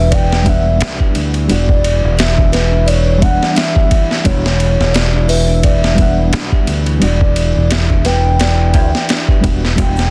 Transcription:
Already playing: fingered electric bass E1, ambient pad E3 E4, soft synth lead E5
0.11 music box D5, soft synth lead G5, kick, ride
0.30 music box D4, snare
0.43 reed electric piano G3 B3, music box E5, kick, ride
0.48 reed electric piano D4 F#5, soft synth lead E5
0.80 fingered electric bass B1, music box D4, snare, ride
0.99 music box G4, kick
1.15 fingered electric bass D2, ride
1.34 ride
1.48 fingered electric bass E1, reed electric piano G3 B3 D4 F#4, music box D4, soft synth lead D5, ride
1.69 kick
1.84 ride
2.04 fingered electric bass E1
2.17 music box G4, soft synth lead E5, snare, ride
2.37 music box D4, kick
2.52 music box B4, snare, ride
2.71 music box D4
2.86 soft synth lead C#5, music box D5, ride
3.06 music box D4
3.18 reed electric piano G3 B3, music box E5, soft synth lead F#5
3.22 reed electric piano D4 F#5, kick, ride
3.43 snare
3.55 music box D4, soft synth lead E5, snare, ride
3.75 music box G4, kick
3.91 kick, ride
4.11 snare
4.24 fingered electric bass E1, reed electric piano G3 B3 D4 F#4, music box D4, soft synth lead C#5, kick, ride
4.46 snare
4.60 ride
4.80 fingered electric bass E1, snare
4.94 music box G4, soft synth lead D5, snare, ride
5.13 music box D4
5.29 music box B4, soft synth lead E5, open hi-hat
5.48 music box D4
5.63 music box D5, kick, ride
5.83 music box D4, snare
5.95 reed electric piano G3 B3, kick, ride
5.99 reed electric piano D4 F#5, music box E5
6.33 fingered electric bass B1, music box D4, snare, ride
6.52 music box G4, kick
6.67 fingered electric bass D2, ride
6.86 ride
6.99 fingered electric bass E1, reed electric piano G3 B3 D4 F#4, music box D4, soft synth lead D5, ride
7.21 kick
7.36 ride
7.56 fingered electric bass E1
7.71 music box G4, soft synth lead E5, snare, ride
7.90 music box D4, kick
8.05 music box B4, soft synth lead G5, snare, ride
8.25 music box D4
8.40 music box D5, snare, ride
8.59 music box D4
8.74 fingered electric bass D2, music box E5, kick, ride
8.95 snare
9.09 music box D4, snare, ride
9.28 music box G4, kick
9.41 fingered electric bass E1, reed electric piano G3 B3 D4, kick, ride
9.45 reed electric piano F#4
9.65 snare
9.76 fingered electric bass E1, reed electric piano G3 B3 D4 F#4, music box D4, soft synth lead G5, kick, ride, shaker
9.96 snare, shaker

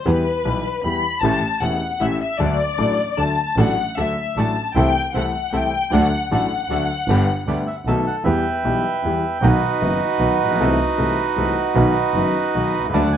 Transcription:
0.05 double bass E2, grand piano E2 E3 G3 B3 G4, violin section B4
0.44 double bass B1, grand piano B1 B2 E3 G3 B3 G4
0.83 double bass E2, grand piano E2 E3 G3 B3 G4, violin section B5
1.21 double bass A1, grand piano A1 A2 E3 A3 C#4 G4, violin section A5
1.61 double bass E1, grand piano E1 E2 E3 A3 C#4 G4, violin section F#5
2.00 double bass A1, grand piano A1 A2 E3 A3 C#4 G4, violin section E5
2.22 violin section E5
2.39 double bass D2, grand piano D2 D3 F#3 A3 D4 A4, violin section D5
2.78 grand piano A1 A2 F#3 A3 D4 A4, double bass A1
3.17 grand piano D2 D3 F#3 A3 D4 A4, double bass D2, violin section A5
3.56 double bass A1, grand piano A1 A2 F#3 A3 D4 A4, bandoneon A3 D4 F#4, violin section F#5
3.97 double bass D2, grand piano D2 D3 F#3 A3 D4 A4, bandoneon A3 D4 F#4, violin section E5
4.36 double bass A1, grand piano A1 A2 F#3 A3 D4 A4, bandoneon A3 D4 F#4, violin section A5
4.74 double bass C2, grand piano C2 C3 E3 A3 C4 A4, bandoneon A3 C4 E4, violin section G5
5.14 double bass C2, grand piano C2 C3 E3 A3 C4 A4, bandoneon A3 C4 E4, violin section F#5
5.52 double bass C2, grand piano C2 C3 E3 A3 C4 A4, bandoneon A3 C4 E4, violin section G5
5.91 double bass D2, grand piano D2 D3 F#3 A3 D4 A4, bandoneon A3 D4 F#4, violin section F#5
6.30 double bass A1, grand piano A1 A2 F#3 A3 D4 A4, bandoneon A3 D4 F#4, violin section F#5
6.68 double bass D2, grand piano D2 D3 F#3 A3 D4 A4, bandoneon A3 D4 F#4
7.08 double bass G1, grand piano G1 G2 D3 G3 B3 G4, bandoneon B3 D4 G4
7.46 double bass D2, grand piano D2 D3 G3 B3 G4, bandoneon B3 D4 G4
7.67 bandoneon E5
7.85 double bass B1, grand piano B1 B2 D#3 A3 B3 F#4, bandoneon B3 D#4 A4 E5
8.07 bandoneon F#5
8.24 double bass E2, grand piano E2 E3 G3 B3 G4, bandoneon B4 E5 G5
8.64 double bass B1, grand piano B1 B2 E3 G3 B3 G4
9.03 double bass E2, grand piano E2 E3 G3 B3 G4
9.41 double bass B1, grand piano B1 B2 D#3 F#3 B3 F#4, bandoneon D#4 F#4 B4
9.81 double bass F#1, grand piano F#1 F#2 D#3 F#3 B3 F#4
10.19 grand piano B1 B2 D#3 F#3 B3 F#4, double bass B1
10.39 double bass A#1
10.45 grand piano A1
10.49 grand piano A#1
10.55 grand piano B1, double bass C2
10.60 grand piano C2 C3 E3 A3 C4 A4
10.98 double bass C2, grand piano C2 C3 E3 A3 C4 A4
11.36 double bass C2, grand piano C2 C3 E3 A3 C4 A4
11.75 double bass B1, grand piano B1 B2 D#3 F#3 B3 F#4
12.14 double bass F#1, grand piano F#1 F#2 D#3 F#3 B3 F#4
12.54 double bass B1, grand piano B1 B2 D#3 F#3 B3 F#4
12.73 double bass C2
12.79 grand piano B1
12.84 grand piano C2
12.89 grand piano C#2, double bass D2, bandoneon A3 D4 F#4
12.94 grand piano D2 D3 F#3 A3 F#4, bandoneon D5 F#5 A5
13.13 bandoneon G#5

